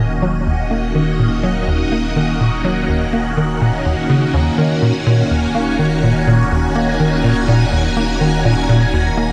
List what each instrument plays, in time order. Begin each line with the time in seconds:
Already playing: sub bass D#1, string machine D#3 A#3 C#4 F#4 D#5, synth texture F#4 F#5
0.22 analog synth bass F#3
0.46 analog synth bass D#2
0.71 analog synth bass A#3
0.95 analog synth bass D#3
1.19 analog synth bass A#2
1.43 analog synth bass F#3
1.68 analog synth bass D#2
1.92 analog synth bass A#3
2.16 analog synth bass D#3
2.40 analog synth bass A#2
2.64 analog synth bass F#3
2.89 analog synth bass D#2
3.13 analog synth bass A#3
3.37 analog synth bass D#3
3.61 analog synth bass A#2
3.85 analog synth bass D#2
4.09 analog synth bass C#3
4.34 analog synth bass D#2
4.58 sub bass D#1, analog synth bass D#3, string machine G#5, synth texture A#5
4.82 analog synth bass A#2
5.06 analog synth bass A#2
5.31 analog synth bass D#2
5.55 analog synth bass A#3
5.79 analog synth bass D#3
6.03 analog synth bass A#2
6.27 analog synth bass A#2
6.51 analog synth bass D#2
6.75 analog synth bass A#3
7.00 analog synth bass D#3
7.24 analog synth bass A#2
7.48 analog synth bass A#2
7.72 analog synth bass D#2
7.97 analog synth bass A#3
8.21 analog synth bass D#3
8.45 analog synth bass A#2
8.69 analog synth bass A#2
8.93 analog synth bass D#2
9.17 analog synth bass A#3